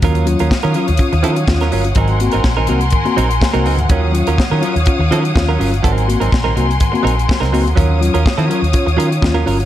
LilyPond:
<<
  \new Staff \with { instrumentName = "String section" } { \time 4/4 \key ees \dorian \tempo 4 = 124 <des'' f'' ges'' ees'''>1 | <bes' aes'' c'''>1 | <des'' f'' ees'''>1 | <bes' aes'' c'''>1 |
<des'' f'' ees'''>1 | }
  \new Staff \with { instrumentName = "Clean electric guitar" } { \time 4/4 \key ees \dorian <ges des' f' bes'>8 r16 <ges des' f' bes'>16 r16 <ges des' f' bes'>16 <ges des' f' bes'>16 r8. <ges des' f' bes'>8 r16 <ges des' f' bes'>16 <ges des' f' bes'>16 r16 | <ges c' ees' bes'>8 r16 <ges c' ees' bes'>16 r16 <ges c' ees' bes'>16 <ges c' ees' bes'>16 r8. <ges c' ees' bes'>16 r8 <ges c' ees' bes'>16 <ges c' ees' bes'>16 r16 | <ges des' f' bes'>8 r16 <ges des' f' bes'>16 r16 <ges des' f' bes'>16 <ges des' f' bes'>16 r8. <ges des' f' bes'>8 r16 <ges des' f' bes'>16 <ges des' f' bes'>16 r16 | <ges c' ees' bes'>8 r16 <ges c' ees' bes'>16 r16 <ges c' ees' bes'>16 <ges c' ees' bes'>16 r8. <ges c' ees' bes'>16 r8 <ges c' ees' bes'>16 <ges c' ees' bes'>16 r16 |
<ges des' f' bes'>8 r16 <ges des' f' bes'>16 r16 <ges des' f' bes'>16 <ges des' f' bes'>16 r8. <ges des' f' bes'>16 r8 <ges des' f' bes'>16 <ges des' f' bes'>16 r16 | }
  \new Staff \with { instrumentName = "Tine electric piano" } { \time 4/4 \key ees \dorian ees16 <des' f'>16 <ges des' f'>16 r16 des'16 ees16 <ges des' f'>16 r16 <des' f'>16 ees16 <des' f'>16 r16 <des' f'>16 ees16 <des' f'>16 r16 | <aes, ees>16 <c' ges'>16 <bes c' ges'>16 r16 <c' ges'>16 <aes, ees>16 <bes c' ges'>16 r16 <aes, ees>16 <bes c' ges'>16 <c' ges'>16 r8 <bes c' ges'>16 r16 <aes, ees>16 | ees16 <des' f'>16 <ges des' f'>16 r16 <des' f'>16 ees16 <ges des' f'>16 r16 <des' f'>16 ees16 <des' f'>16 r16 <des' f'>16 ees16 <des' f'>16 r16 | <aes, ees>16 <c' ges'>16 <bes c' ges'>16 r16 <c' ges'>16 <aes, ees>16 <bes c' ges'>16 r16 <aes, ees>16 <bes c' ges'>16 r4 <bes c' ges'>16 r16 |
ees16 <des' f'>16 <ges des' f'>16 r16 <des' f'>16 ees16 <ges des' f'>16 r16 <des' f'>16 ees16 <des' f'>16 r16 <des' f'>16 ees16 <des' f'>16 r16 | }
  \new Staff \with { instrumentName = "Fingered electric bass" } { \clef bass \time 4/4 \key ees \dorian ees,8. ees,16 r16 ees16 r16 ees,16 r16 ees,16 ees8 ees,8 g,,8 | aes,,8. aes,,16 bes,,8 c,8 r8 bes,,8 r16 c,16 des,16 d,16 | ees,8. ees,16 r16 ees16 r16 ees,16 r16 ees,16 ees8 ees,8 g,,8 | aes,,8. aes,,16 bes,,8 c,8 r8 bes,,8 r16 c,16 des,16 d,16 |
ees,8. ees,16 r16 ees16 r16 ees,16 r16 ees,16 ees8 ees,8 g,,8 | }
  \new DrumStaff \with { instrumentName = "Drums" } \drummode { \time 4/4 <hh bd>16 hh16 hh16 hh16 <bd sn>16 hh16 hh16 hh16 <hh bd>16 hh16 hh16 hh16 <bd sn>16 <hh sn>16 hho16 hh16 | <hh bd>16 hh16 hh16 hh16 <bd sn>8 hh16 hh16 <hh bd>16 hh16 hh16 hh16 <bd sn>16 hh16 hho16 hh16 | <hh bd>8 hh16 hh16 <bd sn>8 hh16 hh16 <hh bd>8 hh16 hh16 <bd sn>8 hho16 hh16 | <hh bd>16 hh16 hh16 hh16 <bd sn>8 hh16 hh16 <hh bd>16 hh16 hh16 hh16 <bd sn>16 <hh sn>16 hho16 hh16 |
<hh bd>8 hh16 hh16 <bd sn>16 hh16 hh16 hh16 <hh bd>16 hh16 hh16 hh16 <bd sn>8 hho16 hh16 | }
>>